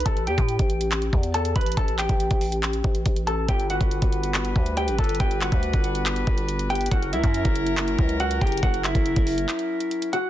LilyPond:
<<
  \new Staff \with { instrumentName = "Clean electric guitar" } { \time 4/4 \key a \mixolydian \tempo 4 = 140 <a' a''>8 <g' g''>2~ <g' g''>8 <a' a''>8 <b' b''>8 | <a' a''>8 <g' g''>2. <a' a''>8 | <g' g''>8 <fis' fis''>2~ <fis' fis''>8 <g' g''>8 <a' a''>8 | <g' g''>8 <fis' fis''>2. <g' g''>8 |
<fis' fis''>8 <e' e''>2~ <e' e''>8 <fis' fis''>8 <g' g''>8 | <fis' fis''>8 <e' e''>2. <fis' fis''>8 | }
  \new Staff \with { instrumentName = "Brass ensemble" } { \time 4/4 \key a \mixolydian r1 | r1 | <g d' b'>1~ | <g d' b'>1 |
<fis cis' ais'>1~ | <fis cis' ais'>1 | }
  \new Staff \with { instrumentName = "808-style bass" } { \clef bass \time 4/4 \key a \mixolydian a,,8 e,16 a,8 a,,4~ a,,16 e,4 a,,8 | a,,8. a,,8 a,,4~ a,,16 a,,8 a,,4 | g,,8. g,,8 g,,4~ g,,16 d,8. a,,16 g,,8 | g,,8. d,8 g,,4~ g,,16 g,,4. |
fis,,8 cis,16 fis,8 fis,,4~ fis,,16 cis,4 fis,,8 | fis,,8. fis,,8 fis,,8. r2 | }
  \new DrumStaff \with { instrumentName = "Drums" } \drummode { \time 4/4 <hh bd>16 hh16 hh16 <hh bd>16 hh16 <hh bd>16 hh16 hh16 <hc hh>16 hh16 bd16 hh16 hh16 hh16 <hh bd>32 hh32 hh32 hh32 | <hh bd>16 hh16 <hc hh>16 <hh bd>16 hh16 <hh bd>16 hho16 hh16 <hc hh>16 hh16 bd16 hh16 <hh bd>16 hh16 hh8 | <hh bd>16 hh16 hh16 <hh bd>16 hh16 <hh bd>16 hh16 hh16 <hc hh>16 hh16 bd16 hh16 hh16 hh16 <hh bd>32 hh32 hh32 hh32 | <hh bd>16 hh16 <hc hh>16 <hh bd>16 hh16 <hh bd>16 hh16 hh16 <hc hh>16 hh16 bd16 hh16 hh16 hh16 hh32 hh32 hh32 hh32 |
<hh bd>16 hh16 hh16 <hh bd>16 hh16 <hh bd>16 hh16 hh16 <hc hh>16 hh16 bd16 hh16 hh16 hh16 <hh bd>32 hh32 hh32 hh32 | <hh bd>16 hh16 <hc hh>16 <hh bd>16 hh16 <hh bd>16 hho16 hh16 <hc hh>16 hh8 hh16 hh16 hh16 hh8 | }
>>